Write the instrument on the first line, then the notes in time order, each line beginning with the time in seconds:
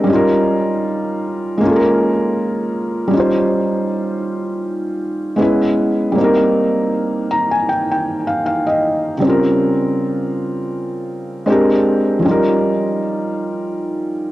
felt piano
Already playing: G#3 G4 A#4
0.04 G3 C#4
0.10 D#4 F4
0.16 A#4
1.58 G#3 A#3
1.64 C#4 F4
1.69 A4
1.76 A#4
3.08 G3 C#4
3.14 D#4 F4
3.20 C5
5.36 G#3 B3 C#4
5.41 E4 B4
6.12 G3 A#3
6.18 C4 D#4
6.24 A#4
7.31 A#5
7.51 G#5
7.69 G5
7.92 G5
8.27 F5
8.46 F5
8.67 D#5
9.18 C#3 G3
9.22 C4 C#4
9.27 F4 A#4
11.46 G#3 C4 D4
11.50 G4 A#4
12.19 F3 C#4
12.25 G3 D#4 F4
12.31 A#4